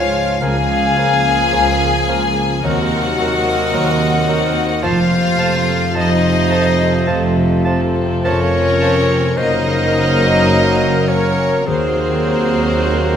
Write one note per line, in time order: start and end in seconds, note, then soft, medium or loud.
0.00 0.28 C#2 loud
0.00 0.28 C#2 medium
0.00 0.39 G#2 medium
0.00 0.40 C#3 medium
0.00 0.39 F3 medium
0.00 0.39 G#3 medium
0.00 0.41 G#3 medium
0.00 0.68 C#4 medium
0.00 0.12 F4 medium
0.00 0.39 F4 loud
0.00 0.39 F4 medium
0.00 0.41 F4 medium
0.00 0.46 G#4 medium
0.00 0.40 C#5 loud
0.00 0.40 F5 loud
0.00 0.44 F5 loud
0.00 2.07 F5 medium
0.00 0.39 G#5 medium
0.00 1.51 F6 medium
0.13 0.96 F4 medium
0.40 1.39 C#2 loud
0.40 1.40 C#2 loud
0.40 2.60 C#3 medium
0.40 2.69 C#3 medium
0.40 2.60 F3 medium
0.40 0.57 F3 medium
0.40 2.60 F4 medium
0.40 2.64 G#4 loud
0.40 0.57 A#4 medium
0.40 2.34 F5 loud
0.40 2.65 G#5 loud
0.40 2.39 G#5 loud
0.69 2.68 C#4 medium
0.97 1.13 F3 medium
0.97 2.06 A#3 medium
0.97 2.35 F4 medium
0.97 2.07 F4 medium
0.97 1.14 A#4 medium
1.25 1.79 A#4 medium
1.52 2.51 C#2 loud
1.52 1.69 F3 medium
1.52 1.68 A#4 medium
1.52 2.69 F6 medium
1.80 3.45 A#4 medium
2.07 2.24 F3 medium
2.07 2.63 A#3 medium
2.07 2.63 F4 medium
2.07 2.24 A#4 medium
2.07 2.69 F5 medium
2.36 2.69 F4 medium
2.63 3.61 D#2 loud
2.63 4.67 C3 medium
2.63 4.88 D#3 medium
2.63 2.80 F#3 medium
2.63 4.67 F#3 loud
2.63 3.18 C4 medium
2.63 4.83 D#4 medium
2.63 4.80 F#4 loud
2.63 2.80 A#4 medium
2.63 3.19 A#4 medium
2.63 4.85 D#5 loud
2.63 4.83 F#5 loud
2.63 4.80 F#5 loud
2.91 6.81 D#4 medium
3.19 3.35 F#3 medium
3.19 4.27 C4 medium
3.19 4.54 F#4 medium
3.19 3.36 A#4 medium
3.19 4.27 A#4 medium
3.46 3.99 A#4 medium
3.73 4.70 D#2 loud
3.73 3.90 F#3 medium
3.73 3.90 A#4 medium
3.73 5.95 C6 medium
4.00 4.87 A#4 medium
4.27 4.44 F#3 medium
4.27 4.83 C4 medium
4.27 4.45 A#4 medium
4.27 4.83 A#4 medium
4.27 6.50 C5 medium
4.55 4.88 F#4 medium
4.83 5.83 F1 loud
4.83 7.07 F2 loud
4.83 5.83 F2 loud
4.83 9.34 C3 loud
4.83 4.99 F3 loud
4.83 9.34 F3 loud
4.83 5.94 F4 loud
4.83 9.21 F4 loud
4.83 5.95 C5 loud
4.83 5.96 F5 loud
4.83 5.98 F5 loud
4.83 5.00 A5 medium
5.11 7.35 C3 medium
5.39 5.56 F3 medium
5.39 6.50 C4 medium
5.39 6.78 F4 medium
5.39 6.50 A4 medium
5.39 5.55 A5 medium
5.68 6.23 A4 medium
5.94 6.95 F1 loud
5.94 6.94 F2 loud
5.94 6.13 F3 medium
5.94 9.21 A3 loud
5.94 7.63 D#4 loud
5.94 7.63 C5 loud
5.94 7.66 D#5 loud
5.94 7.63 D#5 loud
5.94 6.10 A5 medium
5.94 8.24 C6 medium
6.25 7.94 A4 medium
6.51 6.67 F3 medium
6.51 7.64 C4 medium
6.51 7.64 A4 medium
6.51 8.81 C5 medium
6.51 6.67 A5 medium
6.80 7.65 F4 medium
7.07 8.12 F1 loud
7.07 8.11 F2 loud
7.07 9.43 F2 medium
7.07 7.24 F3 medium
7.07 7.23 A5 medium
7.36 9.42 C3 medium
7.65 7.82 F3 medium
7.65 8.80 C4 medium
7.65 9.09 F4 medium
7.65 8.81 A4 medium
7.65 7.81 A5 medium
7.95 8.52 A4 medium
8.24 9.25 F1 loud
8.24 9.25 F2 loud
8.24 8.41 F3 medium
8.24 9.34 C#4 loud
8.24 9.39 A#4 loud
8.24 9.39 C#5 loud
8.24 9.35 C#5 loud
8.24 8.40 A5 medium
8.24 9.42 C6 medium
8.53 9.42 A4 medium
8.80 8.98 F3 medium
8.80 9.37 C4 medium
8.80 9.37 A4 medium
8.80 9.42 C5 medium
8.80 8.96 A5 medium
9.10 9.42 F4 medium
9.37 11.64 F#1 loud
9.37 11.63 F#2 loud
9.37 11.72 F#2 loud
9.37 11.51 C#3 loud
9.37 11.64 F#3 loud
9.37 11.51 F#3 loud
9.37 11.64 A#3 loud
9.37 11.10 D#4 loud
9.37 11.63 A#4 loud
9.37 11.64 A#4 loud
9.37 11.07 C5 loud
9.37 11.10 D#5 loud
9.66 11.72 C#3 medium
9.94 11.07 C#4 medium
10.51 12.83 A#5 medium
11.08 11.72 C#4 medium
11.08 11.68 C#4 loud
11.08 11.68 A#4 loud
11.08 11.67 C#5 loud
11.08 11.68 C#5 loud
11.37 11.94 A#3 medium
11.66 13.16 D#2 medium
11.66 13.16 D#3 medium
11.66 13.16 D#3 loud
11.66 13.16 F#3 medium
11.66 13.16 F#3 loud
11.66 13.16 A#3 loud
11.66 13.16 A#3 medium
11.66 13.16 C4 loud
11.66 13.16 F#4 loud
11.66 13.16 G#4 loud
11.66 13.16 A#4 medium
11.66 13.16 C5 loud
11.95 13.16 A#3 medium
12.25 13.16 F#4 medium
12.54 13.13 D#5 medium
12.84 13.16 A#5 medium